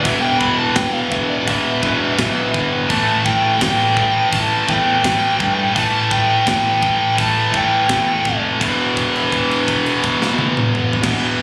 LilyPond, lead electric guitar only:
\new Staff \with { instrumentName = "Lead electric guitar" } { \time 4/4 \key e \minor \tempo 4 = 84 e''16 g''16 b''16 a''16 g''16 f''16 e''16 d''16 e''4. r8 | a''8 g''8 g''4 a''8 g''4. | a''8 g''8 g''4 a''8 g''4~ g''16 r16 | r1 | }